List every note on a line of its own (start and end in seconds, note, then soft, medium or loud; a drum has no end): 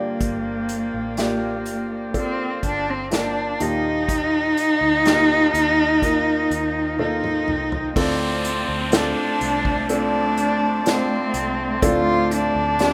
0.00 1.14 G2 medium
0.00 1.14 D3 medium
0.00 7.91 F3 medium
0.00 1.10 A#3 medium
0.00 2.11 A#3 medium
0.00 1.10 D4 medium
0.00 1.11 F4 medium
0.00 1.11 G4 medium
0.00 3.56 D5 medium
0.00 3.62 D5 soft
0.00 3.62 F5 soft
0.00 7.92 F5 medium
0.00 7.92 G5 medium
0.20 0.90 G1 medium
0.20 kick medium
0.20 closed hi-hat medium
0.69 closed hi-hat medium
0.94 1.67 A1 medium
1.17 2.10 A#3 medium
1.17 2.10 D4 medium
1.17 2.10 F4 medium
1.17 2.10 G4 medium
1.17 snare medium
1.17 closed hi-hat medium
1.66 2.59 G1 medium
1.66 closed hi-hat medium
2.13 3.06 A#3 medium
2.13 3.06 D4 medium
2.13 3.06 F4 medium
2.13 3.07 A4 medium
2.13 kick medium
2.13 closed hi-hat medium
2.17 2.61 C4 medium
2.63 3.56 G1 medium
2.63 2.91 D4 medium
2.63 kick medium
2.63 closed hi-hat medium
2.90 3.13 C4 medium
3.10 3.58 A#3 medium
3.10 3.60 D4 medium
3.10 3.59 F4 medium
3.10 3.60 A#4 medium
3.10 snare loud
3.10 closed hi-hat medium
3.14 3.64 D4 medium
3.59 4.53 D#2 medium
3.59 5.01 A#2 medium
3.59 4.98 A#3 medium
3.59 4.98 D#4 medium
3.59 6.99 D#4 loud
3.59 4.98 F4 medium
3.59 4.98 G4 medium
3.59 7.91 D#5 medium
3.59 closed hi-hat medium
4.09 kick medium
4.09 closed hi-hat medium
4.57 closed hi-hat medium
4.81 5.50 D2 medium
5.05 5.97 A#3 medium
5.05 5.97 D#4 medium
5.05 5.98 F4 medium
5.05 5.98 G4 medium
5.05 snare loud
5.05 closed hi-hat medium
5.54 6.46 D#2 medium
5.54 closed hi-hat medium
6.02 6.94 A#3 medium
6.02 6.94 D#4 medium
6.02 6.94 F4 medium
6.02 6.94 A#4 medium
6.02 kick medium
6.02 closed hi-hat medium
6.50 7.43 D#2 medium
6.50 closed hi-hat medium
6.99 7.91 A#3 medium
6.99 7.91 D#4 medium
6.99 7.92 D#4 medium
6.99 7.91 F4 medium
6.99 7.91 A4 medium
6.99 high tom soft
7.24 mid tom medium
7.47 7.92 C2 medium
7.47 mid tom medium
7.72 floor tom medium
7.95 8.64 D2 medium
7.95 9.37 A2 medium
7.95 12.93 F3 medium
7.95 12.93 A3 loud
7.95 8.87 C4 medium
7.95 8.96 C4 medium
7.95 8.88 D4 medium
7.95 8.88 F4 medium
7.95 8.88 A4 medium
7.95 12.93 C5 medium
7.95 12.93 D5 medium
7.95 12.93 A5 medium
7.95 kick loud
7.95 crash medium
7.95 downlifter medium
8.44 closed hi-hat medium
8.68 9.13 D2 medium
8.92 9.84 C4 medium
8.92 9.84 D4 medium
8.92 9.89 D4 loud
8.92 9.84 F4 medium
8.92 9.85 A4 medium
8.92 snare loud
8.92 closed hi-hat medium
9.41 10.37 C2 medium
9.41 closed hi-hat medium
9.65 kick medium
9.89 10.81 C4 medium
9.89 10.81 D4 medium
9.89 10.89 D4 loud
9.89 10.81 F4 medium
9.89 10.81 A4 medium
9.89 closed hi-hat medium
10.37 11.30 D2 loud
10.37 closed hi-hat medium
10.85 11.77 C4 medium
10.85 11.85 C4 medium
10.85 11.78 D4 medium
10.85 11.78 F4 medium
10.85 11.78 C5 medium
10.85 snare medium
10.85 closed hi-hat medium
11.34 11.79 C2 medium
11.34 closed hi-hat medium
11.81 12.51 D2 medium
11.81 12.93 A2 medium
11.81 12.74 C4 medium
11.81 12.74 D4 medium
11.81 12.75 F4 medium
11.81 12.34 F4 loud
11.81 12.74 A4 medium
11.81 kick loud
11.81 closed hi-hat medium
12.31 12.93 D4 loud
12.31 closed hi-hat medium
12.55 12.93 D2 loud
12.79 12.93 C4 medium
12.79 12.93 D4 medium
12.79 12.93 F4 medium
12.79 12.93 G4 medium
12.79 snare loud
12.79 closed hi-hat medium